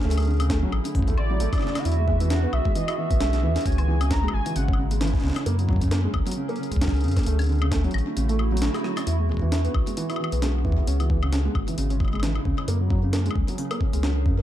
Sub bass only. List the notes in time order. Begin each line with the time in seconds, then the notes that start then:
0.05 D2
0.72 A1
0.95 A1
1.40 A1
1.85 E2
2.53 B1
3.11 B1
3.43 E2
3.66 C#2
4.33 G#1
4.56 G#1
5.24 C#2
5.46 F#2
6.14 C#2
6.71 C#2
7.04 F#2
7.27 D2
7.94 A1
8.17 A1
8.62 A1
9.07 E2
9.75 B1
10.32 B1
10.65 E2
10.87 C#2
11.55 G#1
11.78 G#1
12.45 C#2
12.68 F#2
13.36 C#2
13.93 C#2
14.26 F#2